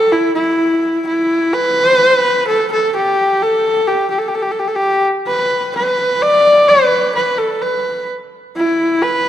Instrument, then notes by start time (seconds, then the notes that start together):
horsehead fiddle
Already playing: A4
0.12 E4
0.35 E4
1.07 E4
1.53 B4
2.48 A4
2.72 A4
2.96 G4
3.42 A4
3.87 G4
4.11 G4
4.19 A4
4.28 G4
4.34 A4
4.42 G4
4.51 A4
4.59 G4
4.68 A4
4.75 G4
5.27 B4
5.76 B4
6.22 D5
6.68 B4
7.15 B4
7.38 A4
7.62 B4
8.56 E4
9.03 B4